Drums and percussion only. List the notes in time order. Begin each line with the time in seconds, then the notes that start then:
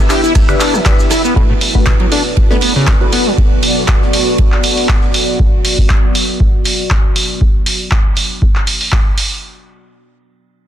0.10 finger snap, clap, open hi-hat, ride, shaker
0.24 shaker
0.35 kick, cross-stick, ride, shaker
0.49 finger snap, shaker
0.60 clap, open hi-hat, ride, shaker
0.74 cross-stick, shaker
0.85 kick, snare, clap, ride, shaker
0.99 snare, shaker
1.10 cross-stick, snare, open hi-hat, ride, shaker
1.25 shaker
1.36 kick, ride
1.61 open hi-hat, ride
1.75 kick
1.86 kick, snare, clap, ride
2.00 ride
2.11 snare, open hi-hat, ride
2.37 kick, ride
2.50 snare
2.61 open hi-hat, ride
2.87 kick, snare, clap, ride
3.12 open hi-hat, ride
3.38 kick, ride
3.62 open hi-hat, ride
3.88 kick, snare, clap, ride
4.02 snare
4.13 open hi-hat, ride
4.38 kick, ride
4.52 clap
4.63 open hi-hat, ride
4.77 open hi-hat
4.89 kick, snare, clap, ride
5.02 snare
5.14 open hi-hat, ride
5.39 kick
5.65 open hi-hat
5.78 kick
5.90 kick, clap
6.15 open hi-hat
6.40 kick
6.65 open hi-hat
6.90 kick, clap
7.16 open hi-hat
7.41 kick
7.66 open hi-hat
7.91 kick, clap
8.17 open hi-hat
8.42 kick
8.55 clap
8.67 open hi-hat
8.81 open hi-hat
8.92 kick, clap
9.18 open hi-hat